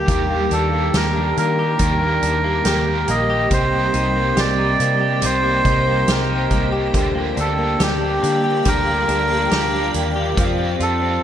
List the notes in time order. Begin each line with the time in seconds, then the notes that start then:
Already playing: A#3 D4 G4
0.07 D#2 D#3 G3 A#3 D4 G4 G5, kick, closed hi-hat
0.31 A#3
0.50 D#2 D4 G4 A4, closed hi-hat
0.55 A#3
0.73 A#3
0.94 D#2 G4 A#4, snare, closed hi-hat
1.16 D4
1.37 D#3 A#3 A#4, closed hi-hat
1.59 G4
1.78 D#2 D#3 G3 A#3 D4, kick, closed hi-hat
1.84 G4
2.01 A#3
2.23 D#2 D4, closed hi-hat
2.44 A#3
2.64 D#2 G3 A#3 G4, snare, closed hi-hat
2.70 G4
3.08 A#1 A#3 D#5, closed hi-hat
3.30 G4
3.49 C2 C3 G3 C5, kick, closed hi-hat
3.53 A#3 D#4 C5
3.58 G4
3.73 A#3
3.94 C2 D#4, closed hi-hat
4.16 A#3
4.37 C2 G4 D5, snare, closed hi-hat
4.58 D#4
4.80 C3 A#3, closed hi-hat
5.01 G4
5.21 C2 C3 G3 A#3 D#4 C5, closed hi-hat
5.26 G4
5.44 A#3
5.65 C2 D#4, kick, closed hi-hat
5.87 A#3
6.07 C2 G3 A#3 G4, snare, closed hi-hat
6.11 D#4 G4 A#4
6.30 D#4
6.51 C2 A#3, kick, closed hi-hat
6.72 G4
6.93 D2 D3 F3 A#3 D4 G4 D5 F5 G5, kick, closed hi-hat
7.15 A#3
7.35 D2 D4 G4, closed hi-hat
7.40 A#3 A4
7.58 A#3
7.80 D2 G4, snare, closed hi-hat
8.01 D4
8.22 D3 A#3, closed hi-hat
8.44 G4
8.64 D2 D3 F3 A#3 D4 A#4, kick, closed hi-hat
8.70 G4
8.87 A#3
9.08 D2 D4, closed hi-hat
9.30 A#3
9.50 D2 F3 A#3 D4 G4, snare, closed hi-hat
9.56 G4
9.73 D4
9.94 D#2 A#3, closed hi-hat
10.16 G4
10.35 F2 F3 A#3 C4 C5 C6, kick, closed hi-hat
10.41 F4
10.59 C4
10.80 F2 F4 A4, closed hi-hat
11.02 C4